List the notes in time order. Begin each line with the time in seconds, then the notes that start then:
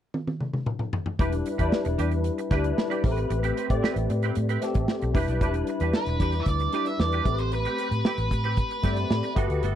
0.14 high tom
0.27 high tom
0.41 mid tom
0.53 mid tom
0.66 mid tom
0.79 mid tom
0.93 floor tom
1.06 floor tom
1.19 E1 G3 D4 E4 G4 B4, kick, closed hi-hat
1.32 muted clean electric guitar stroke, closed hi-hat
1.46 muted clean electric guitar stroke, closed hi-hat
1.58 E2 G3 D4 E4 G4 B4, kick, closed hi-hat
1.72 snare
1.85 E1, muted clean electric guitar stroke, closed hi-hat
1.98 E2 D4 G4 B4, closed hi-hat
2.11 muted clean electric guitar stroke, closed hi-hat
2.24 closed hi-hat
2.38 muted clean electric guitar stroke, closed hi-hat
2.51 D2 G3 D4 E4 G4 B4, kick, snare, closed hi-hat
2.64 muted clean electric guitar stroke, closed hi-hat
2.78 muted clean electric guitar stroke, snare
2.90 D4 G4 B4, closed hi-hat
3.04 A1 A3 C4 G4 A#4, muted clean electric guitar stroke, kick, open hi-hat
3.11 B4
3.17 muted clean electric guitar stroke, closed hi-hat
3.30 A1, muted clean electric guitar stroke, closed hi-hat
3.43 C4 G4 B4, closed hi-hat
3.56 C4 G4 B4, closed hi-hat
3.69 A2 A3 C4 G4 D5, muted clean electric guitar stroke, kick, closed hi-hat
3.83 C4 G4 B4, snare
3.96 A1, muted clean electric guitar stroke, closed hi-hat
4.10 A2, muted clean electric guitar stroke, closed hi-hat
4.23 C4 G4 B4, closed hi-hat
4.35 A2, muted clean electric guitar stroke, closed hi-hat
4.49 C4 G4 B4, closed hi-hat
4.61 A3 C4 G4 A4, muted clean electric guitar stroke, snare, closed hi-hat
4.74 A1, muted clean electric guitar stroke, kick, closed hi-hat
4.88 muted clean electric guitar stroke, snare
5.02 B1, muted clean electric guitar stroke, closed hi-hat
5.13 E1 G3 D4 E4 G4 B4, kick, open hi-hat
5.28 B1 D4 G4 B4, closed hi-hat
5.41 E1 F#3 D4 E4 G4 B4, kick, closed hi-hat
5.47 G3
5.54 muted clean electric guitar stroke, closed hi-hat
5.67 muted clean electric guitar stroke, closed hi-hat
5.80 E2 D4 G4 B4, closed hi-hat
5.93 B4, snare
6.06 E1, muted clean electric guitar stroke, closed hi-hat
6.20 E2 D4 G4 B4, kick, closed hi-hat
6.32 muted clean electric guitar stroke, closed hi-hat
6.40 E5
6.46 D2 D5, kick, closed hi-hat
6.60 muted clean electric guitar stroke, closed hi-hat
6.72 G3 D4 E4 G4 B4, snare, closed hi-hat
6.86 E5, muted clean electric guitar stroke, closed hi-hat
6.99 E2 D5, muted clean electric guitar stroke, snare
7.12 D4 G4 B4, closed hi-hat
7.24 A1 A3 C4 G4 A4, muted clean electric guitar stroke, kick, closed hi-hat
7.32 B4
7.38 C5, muted clean electric guitar stroke, closed hi-hat
7.52 B4, muted clean electric guitar stroke, closed hi-hat
7.65 C4 G4 B4, closed hi-hat
7.78 C4 G4 B4, closed hi-hat
7.91 A2, muted clean electric guitar stroke, closed hi-hat
8.05 C4 G4 B4, snare
8.18 A1, muted clean electric guitar stroke, closed hi-hat
8.31 A2, muted clean electric guitar stroke, kick, closed hi-hat
8.44 C4 G4 B4, closed hi-hat
8.57 muted clean electric guitar stroke, kick, closed hi-hat
8.71 muted clean electric guitar stroke, closed hi-hat
8.83 G2 A3 C4 G4 B4 D5, kick, snare, closed hi-hat
8.96 muted clean electric guitar stroke, closed hi-hat
9.10 A2, muted clean electric guitar stroke, snare
9.23 muted clean electric guitar stroke, closed hi-hat
9.35 G1 A3 B3 F#4 G4 A4 B4, kick, closed hi-hat
9.49 D2 B3 F#4 A4, closed hi-hat
9.62 G1 B3 F#4 A4, closed hi-hat